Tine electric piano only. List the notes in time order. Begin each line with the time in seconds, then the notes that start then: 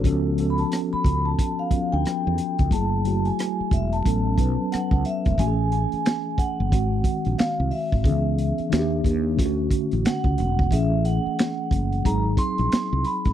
Already playing: F#4
0.04 F3 B3 C#4 A4
0.37 F3 B3 C#4 A4
1.70 F3 B3 C#4 F4
2.71 F#3 A3 E4 G#4
3.04 F#3 A3 E4 F#4
4.04 F#3 B3 C#4 A4
4.37 F#3 B3 C#4 B4
5.37 E3 A3 C#4 F#4
5.47 G#4
6.70 D#3 G#3 C4 F#4
8.03 D3 B3 C#4 G#4
8.09 E3
8.70 D#3 A#3 D4 F#4
8.79 G4
9.36 D3 A3 C#4 F4
9.46 F#4
10.70 E3 A3 C#4 G#4
12.03 F#3 C4 D#4 G#4